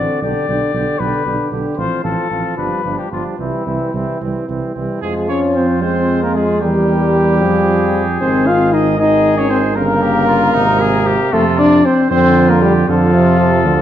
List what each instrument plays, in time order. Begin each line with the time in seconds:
Already playing: euphonium D3, french horn C4, trumpet F#4 D5
0.22 tuba B1, euphonium D3, french horn D4, trumpet G4 D5
0.48 tuba B1, euphonium D3, french horn D4, trumpet G4
0.74 tuba B1, euphonium D3, french horn D4, trumpet G4
0.99 tuba B1, euphonium D3, french horn D4, trumpet G4 B4
1.25 tuba B1, euphonium D3, french horn D4, trumpet G4
1.51 tuba B1, euphonium D3, french horn D4, trumpet G4
1.77 tuba A1, euphonium F3, french horn C4, trumpet F4 C5
2.03 tuba A1, euphonium F3, french horn C4, trumpet F4 A4
2.30 tuba A1, euphonium F3, french horn C4, trumpet F4
2.57 tuba G1, euphonium F3, french horn G3, trumpet D4 B4
2.84 tuba G1, euphonium F3, french horn G3, trumpet D4
2.99 trumpet G4
3.11 tuba G1, euphonium F3, french horn G3, trumpet D4 F4
3.38 tuba C2, euphonium E3, french horn G3, trumpet C4 E4
3.65 tuba C2, euphonium E3, french horn G3, trumpet C4
3.93 tuba C2, euphonium E3, french horn G3, trumpet C4
4.21 tuba C2, euphonium E3, french horn G3, trumpet C4
4.48 tuba C2, euphonium E3, french horn G3, trumpet C4
4.74 tuba C2, euphonium E3, french horn G3, trumpet C4
5.01 tuba F2, euphonium F3, french horn G#3, trumpet F4 G#4
5.28 french horn C#4, trumpet C#5
5.55 french horn C4, trumpet C5
5.81 euphonium G#3, french horn C4, trumpet C5
6.22 french horn A#3, trumpet A#4
6.35 french horn G#3, trumpet G#4
6.61 tuba E2, euphonium G3, french horn G3, trumpet G4 A#4
7.41 tuba F2, euphonium F3, trumpet G#4
8.20 tuba G#1, euphonium D#3, french horn C4, trumpet C5
8.46 french horn F4, trumpet F5
8.73 french horn D#4, trumpet D#5
8.98 euphonium D#3, french horn D#4, trumpet G#4 D#5
9.38 french horn C#4, trumpet C#5
9.50 french horn C4, trumpet C5
9.76 tuba G1, euphonium C#3, french horn A#3, trumpet A#4
10.02 trumpet G4
10.27 trumpet F4
10.54 tuba G#1, euphonium C3, trumpet D#4
10.80 trumpet G#4
11.07 trumpet G4
11.33 tuba F2, euphonium C3, french horn A3, trumpet F4 A4
11.58 french horn D4, trumpet D5
11.85 french horn C4, trumpet C5
12.10 tuba F2, euphonium D3, french horn C4, trumpet F4 C5
12.49 french horn A#3, trumpet A#4
12.61 french horn G3, trumpet G4
12.87 tuba F2, euphonium D3, french horn F3, trumpet F4 A4
13.14 euphonium C3
13.40 euphonium C3
13.65 tuba D2, euphonium D3